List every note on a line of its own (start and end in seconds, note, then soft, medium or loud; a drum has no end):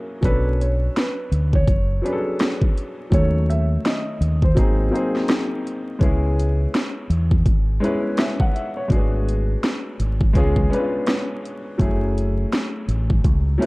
0.00 0.21 F#3 medium
0.00 0.25 A#3 medium
0.00 0.23 C#4 medium
0.00 0.25 E4 medium
0.00 0.25 F#4 medium
0.00 0.25 G#4 medium
0.21 0.87 B1 medium
0.21 1.24 F#3 medium
0.21 1.25 B3 medium
0.21 1.26 C#4 medium
0.21 1.26 D4 medium
0.21 kick loud
0.21 closed hi-hat medium
0.25 1.27 A4 medium
0.25 0.60 B4 loud
0.61 0.93 C#5 medium
0.61 closed hi-hat medium
0.96 1.54 B4 medium
0.96 snare loud
0.96 closed hi-hat medium
1.31 1.64 D2 medium
1.31 closed hi-hat medium
1.53 2.02 C#5 medium
1.53 kick medium
1.68 2.00 F#1 medium
1.68 kick loud
1.68 closed hi-hat medium
2.02 2.79 F#3 medium
2.02 2.80 B3 medium
2.02 2.80 C#4 medium
2.02 2.81 D4 medium
2.02 2.59 B4 medium
2.02 closed hi-hat medium
2.06 2.13 G#4 medium
2.13 2.85 A4 medium
2.39 snare loud
2.39 closed hi-hat medium
2.61 kick medium
2.77 closed hi-hat medium
3.10 3.77 D#2 loud
3.10 4.15 D#3 medium
3.10 4.14 F#3 medium
3.10 4.14 A3 medium
3.10 4.15 C#4 medium
3.10 3.46 C#5 medium
3.10 kick loud
3.10 closed hi-hat medium
3.14 4.16 A4 medium
3.50 3.81 E5 medium
3.50 closed hi-hat medium
3.85 4.39 D#5 medium
3.85 snare loud
3.85 closed hi-hat medium
4.21 4.53 D#2 medium
4.21 closed hi-hat medium
4.42 4.91 C5 medium
4.42 kick medium
4.55 4.89 G#1 medium
4.55 4.86 F#3 medium
4.55 4.86 A#3 medium
4.55 4.87 C4 medium
4.55 4.87 D#4 medium
4.55 kick medium
4.55 closed hi-hat medium
4.59 4.88 G#4 medium
4.90 5.68 F#3 medium
4.90 5.69 A#3 medium
4.90 5.69 C4 medium
4.90 5.70 D#4 medium
4.94 5.70 G#4 medium
4.94 5.26 C5 medium
4.94 closed hi-hat medium
5.16 snare soft
5.28 snare loud
5.28 closed hi-hat medium
5.67 closed hi-hat medium
5.99 6.66 C#2 medium
5.99 7.03 G#3 medium
5.99 7.03 B3 medium
5.99 7.04 C#4 medium
5.99 7.04 E4 medium
5.99 kick loud
5.99 closed hi-hat medium
6.03 7.05 G#4 medium
6.39 closed hi-hat medium
6.74 snare loud
6.74 closed hi-hat medium
7.10 7.42 E2 medium
7.10 closed hi-hat medium
7.31 kick medium
7.46 7.78 G#1 medium
7.46 kick loud
7.46 closed hi-hat medium
7.80 8.58 G#3 medium
7.80 8.58 B3 medium
7.80 8.59 C#4 medium
7.80 8.59 E4 medium
7.80 closed hi-hat medium
7.84 8.60 B4 medium
8.17 8.39 E5 medium
8.17 snare loud
8.17 closed hi-hat medium
8.40 8.54 F#5 medium
8.40 kick medium
8.55 8.75 E5 medium
8.55 closed hi-hat medium
8.77 9.11 C#5 medium
8.88 9.55 G#1 loud
8.88 9.92 G#3 medium
8.88 8.98 A3 medium
8.88 9.93 D4 medium
8.88 9.93 F#4 medium
8.88 kick loud
8.88 closed hi-hat medium
8.92 9.96 B3 medium
8.92 9.94 G#4 medium
9.29 closed hi-hat medium
9.63 snare loud
9.63 closed hi-hat medium
9.99 10.31 G#1 medium
9.99 closed hi-hat medium
10.21 kick medium
10.33 10.67 C#2 loud
10.33 10.64 G#3 medium
10.33 10.65 B3 medium
10.33 10.65 C#4 medium
10.33 10.66 F4 medium
10.33 kick loud
10.33 closed hi-hat medium
10.37 10.67 G#4 loud
10.56 kick medium
10.70 11.47 G#3 medium
10.70 11.47 B3 medium
10.70 11.48 C#4 medium
10.70 10.80 D4 medium
10.70 closed hi-hat medium
10.74 11.49 B4 loud
10.79 11.52 F4 medium
11.07 snare loud
11.07 closed hi-hat medium
11.45 closed hi-hat medium
11.78 12.44 F#1 loud
11.78 12.81 F#3 medium
11.78 12.82 A3 medium
11.78 12.82 C#4 medium
11.78 12.83 E4 medium
11.78 kick loud
11.78 closed hi-hat medium
11.82 12.83 G#4 medium
12.18 closed hi-hat medium
12.53 snare loud
12.53 closed hi-hat medium
12.88 13.20 A1 medium
12.88 closed hi-hat medium
13.10 kick medium
13.24 13.57 C#2 medium
13.24 kick medium
13.24 closed hi-hat medium
13.58 13.66 F#3 medium
13.58 13.66 A3 medium
13.58 13.66 C#4 medium
13.58 13.66 E4 medium
13.62 13.66 B4 medium
13.62 closed hi-hat medium